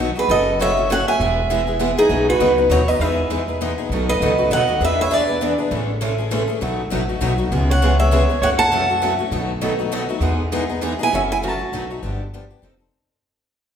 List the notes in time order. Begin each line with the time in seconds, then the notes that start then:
Already playing: B1
0.00 D#4
0.16 B3 D#4 F#4 G#4 B4
0.29 F#1 C#3 F#3 A3 C#4 F#4 A4 D#5
0.60 C#3 F#3 A3 C#4 F#4 A4 C#5 E5
0.77 A3 C#4 F#4
0.90 C#3 F#3 A3 C#4 F#4 A4 C#5 F#5
1.07 A3 C#4 F#4 E5 G#5
1.20 E1 E3 G#3 B3 E4 G#4
1.50 E3 G#3 B3 E4 G#4
1.67 B3 E4 G#4
1.79 E3 G#3 B3 E4 G#4
1.98 B3 D#4 E4 G#4
2.09 B1 B2 C#3 F#3 B3 D#4 B4
2.29 F#4 B4
2.40 C#2 B2 C#3 F#3 B3 D#4 B4
2.58 F#3 B3 D#4 B4
2.69 D#2 B2 C#3 F#3 B3 D#4 F#4 B4 C#5
2.88 F#3 B3 D#4 B4 D#5
2.99 E2 E3 G#3 B3 D#4 G#4 B4 E5
3.30 E3 G#3 B3 D#4 G#4
3.48 B3 D#4 G#4
3.61 E3 G#3 B3 D#4 G#4
3.78 B3 D#4 G#4
3.89 B1 B2 D#3 F#3 A3 B3 D#4 F#4 A4
4.09 B4 D#5
4.21 C#2 B2 D#3 F#3 A3 B3 D#4 F#4 A4
4.38 A3 D#4 F#4
4.50 D#2 B2 D#3 F#3 A3 B3 D#4 F#4 A4 F#5
4.54 D#5
4.68 A3 D#4 F#4
4.81 E2 E3 B3 D4 G#4 B4 E5
4.85 B4
5.01 C#5 E5
5.10 E3 B3 D4 G#4 B4 D5
5.27 B3 D4 G#4
5.41 E3 B3 D4 G#4 B4
5.58 B3 D4 G#4
5.71 A1 C#3 E3 G#3 A3 C#4 E4 G#4 A4
6.01 C#3 E3 G#3 A3 C#4 E4 G#4 A4
6.18 A3 C#4 G#4
6.31 C#3 E3 G#3 A3 C#4 E4 G#4 A4
6.48 A3 C#4 G#4
6.61 B1 B2 F#3 A3 D#4 F#4 B4
6.90 A1 B2 F#3 A3 D#4 F#4 B4
7.09 A3 D#4 F#4
7.21 B1 B2 F#3 A3 D#4 F#4 B4
7.38 A3 D#4 F#4
7.52 C#2 C#3 E3 G#3 B3 C#4 E4 G#4
7.70 C#5 F#5
7.82 C#3 E3 G#3 B3 C#4 E4 G#4
7.99 B3 C#4 G#4 C#5 E5
8.11 C#3 E3 G#3 B3 C#4 E4 G#4
8.29 B3 C#4 G#4
8.42 F#2 C#3 E3 F#3 A3 C#4 E4 F#4 A4 C#5 F#5
8.59 F#5 A5
8.72 C#3 E3 F#3 A3 C#4 E4 F#4 A4
8.90 A3 C#4 F#4
9.02 C#3 E3 F#3 A3 C#4 E4 F#4 A4
9.19 A3 C#4 F#4
9.31 B1 B2 D#3 F#3 A3 B3 D#4 F#4 A4
9.61 B2 D#3 F#3 A3 B3 D#4 F#4 A4
9.79 A3 D#4 F#4
9.92 B2 D#3 F#3 A3 B3 D#4 F#4 A4
10.09 A3 D#4 F#4
10.20 E2 E3 G#3 B3 D#4 G#4
10.52 E3 G#3 B3 D#4 G#4
10.69 B3 D#4 G#4
10.81 E3 G#3 B3 D#4 G#4
10.99 B3 D#4 E4 G#4
11.03 G#5
11.12 F#1 C#3 E3 F#3 A3 C#4 E4 F#4 A4 E5
11.32 E4 G#5
11.42 C#3 E3 F#3 A3 C#4 E4 F#4 A4
11.48 A5
11.59 A3 C#4 F#4
11.72 B1 B2 F#3 A3 D#4 F#4 B4
11.90 A3 D#4 F#4
12.03 G1 D3 F3 B3 D4 G4
12.34 D3 F3 B3 D4 G4
12.50 B3 D4 G4
12.62 F1 F3 C4 D#4 A4
12.80 C4 D#4 A4